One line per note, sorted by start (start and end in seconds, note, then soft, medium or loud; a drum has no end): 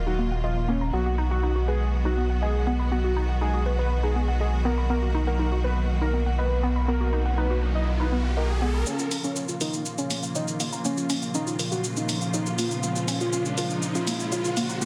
0.00 0.91 D#1 medium
0.00 0.89 D#3 medium
0.00 0.89 F#3 medium
0.00 0.89 A#3 medium
0.00 0.89 F4 medium
0.07 0.16 D#4 medium
0.07 0.28 F#4 medium
0.19 0.25 A#3 medium
0.32 0.43 F#5 medium
0.44 0.58 F4 medium
0.44 0.50 D#5 medium
0.68 0.74 A#3 loud
0.68 0.83 C#4 medium
0.81 0.91 A#5 medium
0.93 8.84 B1 medium
0.93 8.83 D#3 medium
0.93 8.83 F#3 medium
0.93 4.86 B3 medium
0.93 0.99 B3 medium
0.93 8.83 F#4 medium
0.93 1.15 F#4 loud
1.06 1.16 F#4 medium
1.18 1.24 D#4 loud
1.31 1.52 F#4 medium
1.31 1.42 F#5 medium
1.43 1.53 D#4 medium
1.56 1.61 F#4 medium
1.68 1.89 G#4 medium
1.68 1.78 B4 medium
2.05 2.15 D#4 medium
2.05 2.26 F#4 medium
2.17 2.23 B3 medium
2.30 2.41 F#5 medium
2.42 2.71 G#4 medium
2.42 2.48 D#5 medium
2.67 2.73 B3 loud
2.79 2.89 B5 medium
2.92 2.98 B3 medium
2.92 3.20 F#4 medium
3.04 3.14 F#4 medium
3.16 3.22 D#4 loud
3.29 3.41 F#5 medium
3.41 3.51 D#4 medium
3.41 3.63 G#4 medium
3.54 3.60 F#4 medium
3.66 3.76 B4 medium
3.79 3.93 B4 medium
4.03 4.13 D#4 medium
4.03 4.25 G#4 medium
4.16 4.22 B3 medium
4.28 4.40 F#5 medium
4.40 4.55 G#4 medium
4.40 4.46 D#5 medium
4.65 4.71 B3 loud
4.65 4.79 A#4 medium
4.78 4.87 B5 medium
4.90 8.83 A#3 medium
4.90 4.96 B3 medium
4.90 5.11 A#4 loud
4.90 riser medium
5.02 5.12 F#4 medium
5.15 5.21 D#4 loud
5.27 5.48 A#4 medium
5.27 5.39 F#5 medium
5.39 5.49 D#4 medium
5.52 5.58 F#4 medium
5.64 5.74 B4 medium
5.64 5.86 B4 medium
6.01 6.11 D#4 medium
6.01 6.23 A#4 medium
6.14 6.20 B3 medium
6.26 6.38 F#5 medium
6.38 6.67 B4 medium
6.38 6.45 D#5 medium
6.63 6.69 B3 loud
6.76 6.86 B5 medium
6.88 6.94 B3 medium
6.88 7.17 A#4 medium
7.01 7.10 F#4 medium
7.13 7.19 D#4 loud
7.25 7.37 F#5 medium
7.38 7.48 D#4 medium
7.38 7.59 B4 medium
7.50 7.56 F#4 medium
7.62 7.73 B4 medium
7.75 7.89 D#5 medium
8.00 8.10 D#4 medium
8.00 8.21 B4 medium
8.12 8.18 B3 medium
8.25 8.36 F#5 medium
8.37 8.51 A#4 medium
8.37 8.43 D#5 medium
8.62 8.68 B3 loud
8.62 8.76 G#4 medium
8.74 8.84 B5 medium
8.86 14.85 A#2 medium
8.86 14.85 C#3 medium
8.86 14.85 F3 medium
8.86 8.93 A#3 medium
8.86 12.79 A#3 medium
8.86 9.08 C#4 medium
8.86 14.85 F4 medium
8.86 riser medium
8.86 shaker medium
8.99 9.09 F4 medium
8.99 shaker soft
9.11 9.17 C#4 loud
9.11 open hi-hat loud
9.11 shaker medium
9.24 9.45 C#4 loud
9.24 9.36 F5 medium
9.24 shaker soft
9.36 9.46 C#4 medium
9.36 shaker medium
9.49 9.55 F4 medium
9.49 shaker soft
9.61 9.82 D#4 medium
9.61 9.71 A#4 medium
9.61 open hi-hat loud
9.61 shaker medium
9.73 shaker soft
9.86 shaker medium
9.98 10.20 C#4 medium
9.98 10.08 C#4 medium
9.98 shaker soft
10.10 10.16 A#3 medium
10.10 open hi-hat loud
10.10 shaker medium
10.23 10.35 F5 medium
10.23 shaker soft
10.35 10.64 D#4 medium
10.35 10.41 C#5 medium
10.35 shaker medium
10.48 shaker soft
10.60 10.66 A#3 loud
10.60 open hi-hat loud
10.60 shaker medium
10.73 10.82 A#5 medium
10.73 shaker soft
10.85 10.91 A#3 medium
10.85 11.13 C#4 loud
10.85 shaker medium
10.97 11.07 F4 medium
10.97 shaker soft
11.10 11.16 C#4 loud
11.10 open hi-hat loud
11.10 shaker medium
11.22 11.34 F5 medium
11.22 shaker soft
11.35 11.45 C#4 medium
11.35 11.56 D#4 loud
11.35 shaker medium
11.47 11.53 F4 medium
11.47 shaker soft
11.59 11.69 A#4 medium
11.59 open hi-hat loud
11.59 shaker medium
11.72 11.86 F#4 medium
11.72 shaker soft
11.84 shaker medium
11.97 12.06 C#4 medium
11.97 12.18 D#4 medium
11.97 shaker soft
12.09 12.15 A#3 medium
12.09 open hi-hat loud
12.09 shaker medium
12.21 12.33 F5 medium
12.21 shaker soft
12.34 12.48 D#4 medium
12.34 12.40 C#5 medium
12.34 shaker medium
12.46 shaker soft
12.58 12.64 A#3 loud
12.58 12.73 F4 medium
12.58 open hi-hat loud
12.58 shaker medium
12.71 12.81 A#5 medium
12.71 shaker soft
12.83 14.85 G#3 medium
12.83 12.89 A#3 medium
12.83 13.05 F4 loud
12.83 shaker medium
12.96 13.06 F4 medium
12.96 shaker soft
13.08 13.14 C#4 loud
13.08 open hi-hat loud
13.08 shaker medium
13.21 13.42 F4 medium
13.21 13.32 F5 medium
13.21 shaker soft
13.33 13.43 C#4 medium
13.33 shaker medium
13.45 13.51 F4 medium
13.45 shaker soft
13.58 13.79 F4 medium
13.58 13.68 A#4 medium
13.58 open hi-hat loud
13.58 shaker medium
13.70 shaker soft
13.83 shaker medium
13.95 14.05 C#4 medium
13.95 14.16 F4 medium
13.95 shaker soft
14.07 14.13 A#3 medium
14.07 open hi-hat loud
14.07 shaker medium
14.20 14.31 F5 medium
14.20 shaker soft
14.32 14.61 F4 medium
14.32 14.38 C#5 medium
14.32 shaker medium
14.45 shaker soft
14.57 14.63 A#3 loud
14.57 open hi-hat loud
14.57 shaker medium
14.69 14.79 A#5 medium
14.69 shaker soft
14.82 14.85 A#3 medium
14.82 14.85 F4 medium
14.82 shaker medium